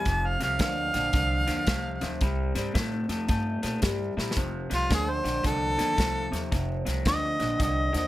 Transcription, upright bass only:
0.06 0.35 F1 medium
0.40 0.56 C2 medium
0.60 0.89 D2 medium
0.94 1.10 A#1 medium
1.14 1.43 C2 medium
1.48 1.64 D#2 medium
1.67 1.96 C2 medium
2.03 2.18 D2 medium
2.22 2.50 C2 medium
2.55 2.72 G2 medium
2.75 3.04 A2 medium
3.09 3.25 F2 medium
3.29 3.58 G2 medium
3.64 3.80 A#2 medium
3.83 4.12 G2 medium
4.17 4.34 A#2 medium
4.37 4.66 F1 medium
4.71 4.87 C2 medium
4.91 5.19 D2 medium
5.24 5.41 A#1 medium
5.45 5.73 C2 medium
5.78 5.95 D#2 medium
5.98 6.27 C2 medium
6.32 6.48 D#2 medium
6.52 6.81 F1 medium
6.87 7.03 C2 medium
7.06 7.35 D2 loud
7.40 7.57 A#1 medium
7.60 7.89 C2 medium
7.94 8.07 D#2 medium

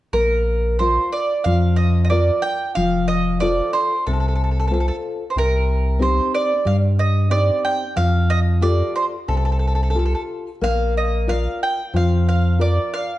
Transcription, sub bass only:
0.13 0.99 A#1 medium
1.46 2.31 F2 medium
2.77 3.61 F1 medium
4.07 4.91 C2 medium
5.36 6.21 C2 medium
6.66 7.51 G2 medium
7.97 8.83 F2 medium
9.28 10.15 C2 medium
10.62 11.48 A#1 medium
11.94 12.79 F2 medium

